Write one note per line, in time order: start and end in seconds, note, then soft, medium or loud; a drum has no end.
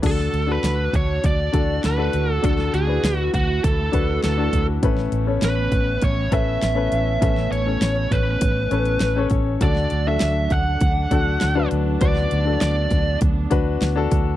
0.02 0.28 D2 medium
0.02 0.89 D3 medium
0.02 9.59 A3 medium
0.02 0.42 D4 medium
0.02 2.41 D4 medium
0.02 0.42 F#4 soft
0.02 4.79 F#4 medium
0.02 0.42 A4 medium
0.02 kick medium
0.02 closed hi-hat medium
0.02 crash medium
0.06 0.51 A4 medium
0.19 snare soft
0.33 0.58 D2 medium
0.33 closed hi-hat medium
0.47 1.38 D4 medium
0.47 1.39 F#4 medium
0.47 1.39 A4 medium
0.52 0.96 B4 medium
0.63 0.88 D2 medium
0.63 snare medium
0.63 closed hi-hat medium
0.93 1.18 D2 medium
0.93 1.23 C#5 medium
0.93 kick medium
0.93 closed hi-hat medium
1.24 1.48 D2 medium
1.24 1.80 D5 medium
1.24 kick medium
1.24 closed hi-hat medium
1.52 1.78 D2 medium
1.52 1.92 D4 medium
1.52 1.92 F#4 medium
1.52 1.93 A4 medium
1.52 kick medium
1.52 closed hi-hat medium
1.84 2.09 D2 medium
1.84 2.33 B4 medium
1.84 snare medium
1.84 closed hi-hat medium
1.97 2.37 D4 medium
1.97 2.37 F#4 medium
1.97 2.37 A4 medium
2.13 2.38 D2 medium
2.13 closed hi-hat medium
2.33 2.46 A4 medium
2.42 2.68 D2 medium
2.42 3.29 D3 medium
2.42 2.81 D4 medium
2.42 4.81 E4 medium
2.42 2.82 F#4 medium
2.42 2.82 A4 medium
2.42 2.74 A4 medium
2.42 kick loud
2.42 closed hi-hat medium
2.59 snare soft
2.74 2.98 D2 medium
2.74 3.18 G#4 medium
2.74 closed hi-hat medium
2.87 3.78 D4 medium
2.87 3.79 F#4 medium
2.87 3.79 B4 medium
3.03 3.28 D2 medium
3.03 snare loud
3.03 closed hi-hat medium
3.18 3.30 F#4 medium
3.34 3.58 D2 medium
3.34 3.64 F#4 medium
3.34 kick medium
3.34 closed hi-hat medium
3.64 3.88 D2 medium
3.64 4.20 A4 medium
3.64 kick medium
3.64 closed hi-hat medium
3.92 4.18 D2 medium
3.92 4.31 D4 medium
3.92 4.32 F#4 medium
3.92 4.32 B4 medium
3.92 kick medium
3.92 closed hi-hat medium
4.24 4.48 D2 medium
4.24 4.65 A4 medium
4.24 snare medium
4.24 closed hi-hat medium
4.38 4.77 D4 medium
4.38 4.77 F#4 medium
4.38 4.77 A4 medium
4.53 4.77 D2 medium
4.53 kick medium
4.53 closed hi-hat medium
4.83 5.07 A1 medium
4.83 5.69 A2 medium
4.83 9.59 B3 medium
4.83 5.22 C#4 medium
4.83 9.59 C#4 medium
4.83 5.22 A4 medium
4.83 5.22 B4 medium
4.83 kick loud
4.83 closed hi-hat medium
4.98 snare soft
5.12 5.37 A1 medium
5.12 closed hi-hat medium
5.27 6.18 C#4 medium
5.27 6.18 A4 medium
5.27 6.19 C#5 medium
5.42 5.67 A1 loud
5.42 6.05 B4 medium
5.42 snare medium
5.42 closed hi-hat medium
5.72 5.97 A1 medium
5.72 kick medium
5.72 closed hi-hat medium
6.02 6.27 A1 medium
6.02 6.33 C#5 medium
6.02 kick medium
6.02 closed hi-hat medium
6.31 6.56 A1 medium
6.31 6.71 C#4 medium
6.31 6.71 A4 medium
6.31 6.71 B4 medium
6.31 7.22 E5 loud
6.31 kick medium
6.31 closed hi-hat medium
6.62 6.87 A1 medium
6.62 snare medium
6.62 closed hi-hat medium
6.75 7.15 C#4 medium
6.75 7.16 A4 medium
6.75 7.16 B4 medium
6.92 7.17 A1 medium
6.92 closed hi-hat medium
7.21 7.46 A1 loud
7.21 8.08 A2 medium
7.21 7.60 C#4 medium
7.21 7.61 A4 medium
7.21 7.61 B4 medium
7.21 7.51 E5 loud
7.21 kick loud
7.21 closed hi-hat medium
7.37 snare soft
7.51 7.76 A1 medium
7.51 8.14 C#5 medium
7.51 closed hi-hat medium
7.66 8.57 C#4 medium
7.66 8.58 A4 medium
7.66 8.58 C#5 medium
7.81 8.06 A1 medium
7.81 snare loud
7.81 closed hi-hat medium
8.11 8.36 A1 medium
8.11 9.28 B4 medium
8.11 kick medium
8.11 closed hi-hat medium
8.41 8.66 A1 medium
8.41 kick medium
8.41 closed hi-hat medium
8.71 8.96 A1 medium
8.71 9.10 C#4 medium
8.71 9.11 A4 medium
8.71 9.11 B4 medium
8.71 closed hi-hat medium
8.86 closed hi-hat medium
9.00 9.26 A1 medium
9.00 snare medium
9.00 closed hi-hat medium
9.16 9.55 C#4 medium
9.16 9.56 A4 medium
9.16 9.57 C#5 medium
9.30 9.56 A1 medium
9.30 kick medium
9.30 closed hi-hat medium
9.61 9.86 D2 loud
9.61 10.48 D3 medium
9.61 14.37 F#3 medium
9.61 11.99 A3 medium
9.61 14.37 D4 medium
9.61 10.00 D4 medium
9.61 10.01 F#4 medium
9.61 10.01 A4 medium
9.61 10.08 D5 medium
9.61 kick loud
9.61 closed hi-hat medium
9.76 snare soft
9.90 10.16 D2 medium
9.90 closed hi-hat medium
10.07 10.98 D4 medium
10.07 10.98 F#4 soft
10.07 10.98 A4 medium
10.07 10.54 E5 medium
10.20 10.46 D2 medium
10.20 snare loud
10.20 closed hi-hat medium
10.50 10.76 D2 medium
10.50 11.68 F#5 medium
10.50 kick medium
10.50 closed hi-hat medium
10.81 11.06 D2 medium
10.81 kick medium
10.81 closed hi-hat medium
11.11 11.36 D2 medium
11.11 11.50 D4 medium
11.11 11.51 F#4 medium
11.11 11.51 A4 medium
11.11 kick medium
11.11 closed hi-hat medium
11.41 11.67 D2 medium
11.41 snare medium
11.41 closed hi-hat medium
11.55 11.95 D4 medium
11.55 11.95 F#4 medium
11.55 11.96 B4 medium
11.71 11.96 D2 medium
11.71 closed hi-hat medium
12.00 12.26 D2 medium
12.00 12.88 D3 medium
12.00 14.37 B3 medium
12.00 12.40 D4 medium
12.00 12.40 F#4 medium
12.00 12.41 B4 medium
12.00 12.60 D5 loud
12.00 kick loud
12.00 closed hi-hat medium
12.16 snare soft
12.31 12.57 D2 medium
12.31 closed hi-hat medium
12.45 13.37 D4 medium
12.45 13.37 F#4 medium
12.45 13.38 A4 medium
12.61 12.86 D2 medium
12.61 13.18 D5 medium
12.61 snare medium
12.61 closed hi-hat medium
12.91 13.16 D2 medium
12.91 kick medium
12.91 closed hi-hat medium
13.21 13.46 D2 medium
13.21 kick medium
13.21 closed hi-hat medium
13.50 13.76 D2 medium
13.50 13.90 D4 medium
13.50 13.90 F#4 medium
13.50 13.91 B4 medium
13.50 kick medium
13.50 closed hi-hat medium
13.81 14.06 D2 medium
13.81 snare medium
13.81 closed hi-hat medium
13.96 14.35 D4 medium
13.96 14.36 F#4 medium
13.96 14.36 A4 medium
14.11 14.37 D2 medium
14.11 kick medium
14.11 closed hi-hat medium